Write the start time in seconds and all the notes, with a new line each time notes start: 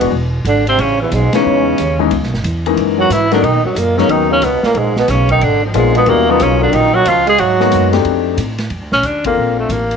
Already playing: B2 B3
0.00 D1 E3 G#3 B3 D4 F#4, ride
0.12 E1
0.45 G#1 D3 D4, hi-hat pedal, ride
0.67 C3 C4, ride
0.78 A1 C#3 C#4, ride
1.02 E2 E3
1.11 B1 G#2 G#3, hi-hat pedal, ride
1.33 C#3 E3 G#3 B3 C#4 D#4, snare, ride
1.45 E2
1.78 D#2, hi-hat pedal, ride
1.99 E3 G#3 B3 C#4 D#4
2.11 C#2, ride
2.22 B1, snare
2.33 G#1, snare
2.44 E2, hi-hat pedal, ride
2.66 E3 G#3 A#3 C#4 D#4, ride
2.76 F#2, ride
2.98 F#3 F#4
3.10 G#2 E3 E4, hi-hat pedal, ride
3.31 D3 F#3 A#3 B3 C#4 D4 D#4, snare, ride
3.43 B2 D#3 D#4, ride
3.53 A#2
3.64 F#2 F#3
3.75 F#2 A#2 A#3, hi-hat pedal, ride
3.97 C#3 F#3 A#3 B3 C#4 D#4, snare
4.08 D#2 D#3 D#4, ride
4.31 C#3 C#4
4.42 C#2 B2 B3, hi-hat pedal, ride
4.63 A#2 A#3, muted upright bass stroke, snare
4.74 A#1 G#2 G#3, ride
4.96 B2 B3, snare
5.08 B1 C#3 C#4, snare, hi-hat pedal, ride
5.29 D#3 D#4, kick, ride
5.41 G#1 D3 D4, ride
5.64 F2 F3
5.74 A#1 G#2 G#3 A#3 B3 D4 F4, hi-hat pedal, ride
5.95 B2 B3, ride
6.06 D#2 A#2 G3 A#3 B3 D4 E4 F#4, ride
6.28 B2 F#3 A#3 B3 C#4 D#4 F4
6.40 B1 C#3 C#4, hi-hat pedal, ride
6.61 D3 D4
6.72 A#1 D#3 D#4, ride
6.94 F#3 F#4
7.05 C#2 F3 F4, hi-hat pedal, ride
7.27 G#3 G#4, ride
7.38 G#2 F#3 F#4, ride
7.60 G#3 A#3 B3 D#4 F#4, snare
7.72 F#2, hi-hat pedal, ride
7.93 A3 C4 D4 D#4 G4, snare, ride
8.04 F2, ride
8.37 A2, hi-hat pedal, ride
8.58 snare, ride
8.70 F2, ride
8.81 D2
8.92 A#1 C#4, snare
9.03 D#2 D4, hi-hat pedal, ride
9.24 A#3 C4 D4 F4 A4, kick, ride
9.37 A#1
9.59 A3
9.69 A1 A#3, hi-hat pedal, ride
9.91 ride